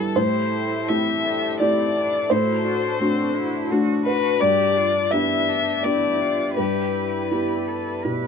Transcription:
Already playing: G2 G3 B3 E4 G4 A4 B4
0.16 A2 E4 G4 A4 C5
0.89 A3 C4 E4 G4 E5
1.25 D4
1.60 A3 C4 E4 G4 D5
1.95 D4
2.30 A2 D4 E4 F#4 C5
2.64 D4
2.99 A3 C4 D4 F#4
3.35 E4
3.71 A3 D4 F#4
4.06 F#4 B4
4.40 G2 G4 D5
4.77 F4
5.11 B3 D4 E4 G4 E5
5.49 D4
5.83 B3 D4 E4 G4 D5
6.21 F4
6.56 G2 E4 G4 B4
7.31 B3 E4 G4
7.68 A4
8.05 B2 E4 G4 B4

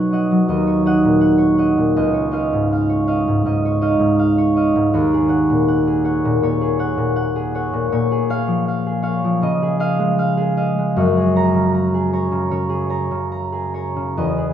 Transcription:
Already playing: B2 F#3 D#4 C#5 D#5 F#5
0.13 D#5 F#5
0.31 F#3
0.49 D#2 D#5
0.67 C#5
0.86 D#4 D#5 F#5
1.04 A#2
1.21 F#5
1.38 C#5
1.58 D#5 F#5
1.78 A#2
1.96 C#2 D#5
2.14 C#5
2.31 D#4 D#5 F5
2.53 G#2
2.72 F5
2.89 C#5
3.08 D#5 F5
3.28 G#2
3.46 G#2 D#5
3.65 C#5
3.81 D#4 D#5 F5
3.99 G#2
4.19 F5
4.38 C#5
4.56 D#5 F5
4.76 G#2
4.94 D#2 C#5
5.14 G#4
5.29 C#5 F#5
5.50 A#2
5.68 F#5
5.87 G#4
6.05 C#5 F#5
6.25 A#2
6.43 A#2 C#5
6.61 G#4
6.79 C#5 F#5
6.98 A#2
7.16 F#5
7.36 G#4
7.55 C#5 F#5
7.73 A#2
7.92 A#2 C#5
8.11 G#4
8.30 C#5 F5
8.47 F3
8.68 F5
8.86 G#4
9.03 C#5 F5
9.24 F3
9.42 C#3 D#5
9.63 G#4
9.80 D#5 F5
9.99 G#3
10.19 F5
10.37 G#4
10.57 D#5 F5
10.78 G#3
10.96 F#2 C#5
11.17 G#4
11.36 C#5 A#5
11.54 C#3
11.75 A#5
11.94 G#4
12.13 C#5 A#5
12.32 C#3
12.51 C#3 C#5
12.69 G#4
12.89 C#5 A#5
13.11 C#3
13.32 A#5
13.52 G#4
13.74 C#5 A#5
13.96 C#3
14.17 E2 D#5
14.38 G#4

